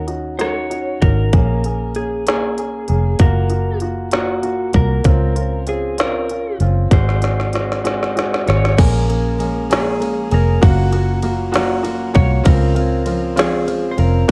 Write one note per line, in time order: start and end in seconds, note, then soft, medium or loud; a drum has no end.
0.00 0.98 D#2 medium
0.07 0.34 C#4 medium
0.07 0.34 D#4 medium
0.07 0.34 F#4 medium
0.07 closed hi-hat soft
0.38 0.65 C#4 medium
0.38 0.66 D#4 medium
0.38 0.66 F#4 medium
0.38 1.04 C#5 medium
0.38 cross-stick medium
0.38 closed hi-hat medium
0.70 0.97 C#4 medium
0.70 0.97 D#4 medium
0.70 0.97 F#4 medium
0.70 closed hi-hat soft
1.01 1.31 G#1 medium
1.01 1.28 C#4 medium
1.01 1.28 D#4 medium
1.01 1.28 F#4 medium
1.01 1.96 A#4 medium
1.01 kick medium
1.01 closed hi-hat soft
1.33 2.85 A#1 medium
1.33 1.59 A#3 medium
1.33 1.60 C#4 medium
1.33 1.60 G#4 medium
1.33 kick medium
1.33 closed hi-hat medium
1.64 1.91 A#3 medium
1.64 1.91 C#4 medium
1.64 1.91 G#4 medium
1.64 closed hi-hat soft
1.95 2.22 A#3 medium
1.95 2.22 C#4 medium
1.95 2.27 G#4 medium
1.95 2.22 G#4 medium
1.95 closed hi-hat soft
2.27 2.53 A#3 medium
2.27 2.54 C#4 medium
2.27 2.54 G#4 medium
2.27 3.21 G#4 medium
2.27 snare loud
2.27 closed hi-hat medium
2.58 2.84 A#3 medium
2.58 2.84 C#4 medium
2.58 2.84 G#4 medium
2.58 closed hi-hat soft
2.88 3.18 F1 medium
2.88 3.15 A#3 medium
2.88 3.15 C#4 medium
2.88 3.15 G#4 medium
2.88 closed hi-hat soft
3.19 4.70 F#1 medium
3.19 3.46 A#3 medium
3.19 3.46 F4 medium
3.19 3.46 F#4 medium
3.19 3.79 A#4 medium
3.19 kick loud
3.19 closed hi-hat medium
3.50 3.77 A#3 medium
3.50 3.77 F4 soft
3.50 3.77 F#4 medium
3.50 closed hi-hat soft
3.80 4.08 A#3 medium
3.80 4.08 F4 medium
3.80 4.08 F#4 medium
3.80 closed hi-hat soft
4.11 4.38 A#3 medium
4.11 4.38 F4 medium
4.11 4.39 F#4 medium
4.11 4.77 F#4 medium
4.11 snare medium
4.11 closed hi-hat medium
4.42 4.69 A#3 medium
4.42 4.69 F4 medium
4.42 4.69 F#4 medium
4.42 closed hi-hat soft
4.73 5.03 C2 medium
4.73 5.00 A#3 medium
4.73 5.00 F4 medium
4.73 5.00 F#4 medium
4.73 5.64 A#4 medium
4.73 kick medium
4.73 closed hi-hat soft
5.04 6.56 C#2 medium
5.04 5.31 C4 medium
5.04 5.31 C#4 medium
5.04 5.31 F4 medium
5.04 kick medium
5.04 closed hi-hat medium
5.36 5.62 C4 medium
5.36 5.62 C#4 medium
5.36 5.62 F4 medium
5.36 closed hi-hat medium
5.67 5.93 C4 medium
5.67 5.93 C#4 medium
5.67 5.94 F4 medium
5.67 6.00 G#4 medium
5.67 closed hi-hat soft
5.98 6.24 C4 medium
5.98 6.24 C#4 medium
5.98 6.25 F4 medium
5.98 6.57 A#4 medium
5.98 snare loud
5.98 closed hi-hat medium
6.29 6.56 C#4 medium
6.29 6.56 F4 medium
6.29 closed hi-hat soft
6.60 6.90 F#1 medium
6.60 6.87 C4 medium
6.60 6.87 C#4 medium
6.60 6.87 F4 medium
6.60 closed hi-hat soft
6.91 8.43 G#1 medium
6.91 7.18 G#3 medium
6.91 7.18 C4 medium
6.91 7.18 F#4 loud
6.91 8.13 C5 medium
6.91 kick loud
6.91 snare soft
6.91 closed hi-hat medium
7.09 snare soft
7.21 7.48 G#3 medium
7.21 7.48 C4 medium
7.21 7.48 F#4 medium
7.21 snare medium
7.21 closed hi-hat soft
7.40 snare medium
7.53 7.80 G#3 medium
7.53 7.80 C4 medium
7.53 7.80 F#4 medium
7.53 snare medium
7.53 closed hi-hat soft
7.72 snare medium
7.84 8.11 G#3 medium
7.84 8.11 C4 medium
7.84 8.11 F#4 medium
7.84 snare medium
7.84 closed hi-hat medium
8.03 snare medium
8.15 8.42 G#3 medium
8.15 8.42 C4 medium
8.15 8.42 F#4 medium
8.15 snare medium
8.15 closed hi-hat soft
8.34 snare medium
8.46 8.77 G#1 medium
8.46 8.73 G#3 medium
8.46 8.73 C4 medium
8.46 8.73 F#4 medium
8.46 8.80 C#5 medium
8.46 snare medium
8.46 closed hi-hat soft
8.65 snare medium
8.77 10.28 A#1 loud
8.77 9.09 A#2 medium
8.77 9.09 F3 medium
8.77 9.09 G#3 medium
8.77 9.04 A#3 loud
8.77 9.04 C#4 medium
8.77 9.08 C#4 medium
8.77 9.04 G#4 loud
8.77 9.06 G#4 medium
8.77 9.72 A#4 medium
8.77 kick loud
8.77 crash loud
8.77 ride medium
9.08 9.38 G#3 soft
9.08 9.35 A#3 medium
9.08 9.35 C#4 medium
9.08 9.39 C#4 medium
9.08 9.39 G#4 soft
9.08 9.35 G#4 medium
9.08 ride soft
9.38 9.70 F3 medium
9.38 9.70 G#3 medium
9.38 9.65 A#3 medium
9.38 9.66 C#4 medium
9.38 9.69 C#4 medium
9.38 9.66 G#4 medium
9.38 9.68 G#4 medium
9.38 ride soft
9.70 10.02 A#2 medium
9.70 9.99 F3 medium
9.70 9.99 G#3 medium
9.70 9.96 A#3 medium
9.70 9.96 C#4 medium
9.70 10.00 C#4 medium
9.70 10.01 G#4 medium
9.70 9.97 G#4 loud
9.70 10.34 G#4 medium
9.70 snare loud
9.70 ride medium
10.00 10.31 F3 medium
10.00 10.32 G#3 medium
10.00 10.27 A#3 medium
10.00 10.27 C#4 medium
10.00 10.31 C#4 medium
10.00 10.27 G#4 medium
10.00 10.29 G#4 medium
10.00 ride soft
10.30 10.61 F1 loud
10.30 10.62 G#3 soft
10.30 10.57 A#3 medium
10.30 10.57 C#4 medium
10.30 10.62 C#4 medium
10.30 10.62 G#4 medium
10.30 10.57 G#4 medium
10.30 10.64 A#4 medium
10.30 ride soft
10.61 12.11 F#1 loud
10.61 10.92 F#3 medium
10.61 10.88 A#3 loud
10.61 10.93 A#3 medium
10.61 10.92 C#4 medium
10.61 10.88 F4 medium
10.61 10.88 F#4 loud
10.61 11.82 F#4 medium
10.61 kick loud
10.61 ride medium
10.92 11.18 A#3 medium
10.92 11.22 A#3 soft
10.92 11.23 C#4 medium
10.92 11.18 F4 medium
10.92 11.19 F#4 medium
10.92 ride soft
11.22 11.54 F#3 medium
11.22 11.49 A#3 medium
11.22 11.53 A#3 medium
11.22 11.52 C#4 medium
11.22 11.49 F4 medium
11.22 11.49 F#4 medium
11.22 ride soft
11.52 11.83 F#3 medium
11.52 11.79 A#3 medium
11.52 11.84 A#3 medium
11.52 11.84 C#4 medium
11.52 11.79 F4 medium
11.52 11.79 F#4 loud
11.52 snare loud
11.52 ride medium
11.82 12.15 F#3 medium
11.82 12.09 A#3 medium
11.82 12.15 A#3 medium
11.82 12.15 C#4 medium
11.82 12.10 F4 medium
11.82 12.10 F#4 medium
11.82 ride soft
11.87 12.13 F4 medium
12.14 12.44 C2 medium
12.14 12.40 A#3 medium
12.14 12.45 A#3 medium
12.14 12.46 C#4 soft
12.14 12.40 F4 medium
12.14 12.45 F4 medium
12.14 12.40 F#4 medium
12.14 12.46 C#5 loud
12.14 kick medium
12.14 ride soft
12.44 13.95 C#2 loud
12.44 12.76 C#3 medium
12.44 12.76 F3 medium
12.44 12.76 G#3 medium
12.44 12.70 C4 loud
12.44 12.75 C4 medium
12.44 12.70 C#4 medium
12.44 12.71 F4 loud
12.44 12.74 F4 loud
12.44 13.39 A#4 medium
12.44 kick loud
12.44 ride medium
12.75 13.05 G#3 soft
12.75 13.01 C4 medium
12.75 13.06 C4 soft
12.75 13.01 C#4 medium
12.75 13.01 F4 medium
12.75 13.06 F4 medium
12.75 ride soft
13.06 13.37 F3 medium
13.06 13.36 G#3 medium
13.06 13.32 C4 medium
13.06 13.36 C4 medium
13.06 13.32 C#4 medium
13.06 13.33 F4 medium
13.06 13.36 F4 medium
13.06 ride soft
13.36 13.69 C#3 medium
13.36 13.65 F3 medium
13.36 13.66 G#3 medium
13.36 13.63 C4 medium
13.36 13.67 C4 medium
13.36 13.63 C#4 medium
13.36 13.63 F4 loud
13.36 13.68 F4 medium
13.36 13.94 G#4 medium
13.36 snare loud
13.36 ride medium
13.66 13.98 F3 medium
13.66 13.98 G#3 medium
13.66 13.93 C4 medium
13.66 13.98 C4 medium
13.66 13.93 C#4 medium
13.66 13.94 F4 medium
13.66 13.96 F4 medium
13.66 ride soft
13.91 13.98 C5 medium
13.97 14.27 F1 loud
13.97 14.29 G#3 soft
13.97 14.24 C4 medium
13.97 14.29 C4 medium
13.97 14.24 C#4 medium
13.97 14.29 F4 medium
13.97 14.24 F4 medium
13.97 14.30 A#4 loud
13.97 ride soft
14.28 14.31 A#3 loud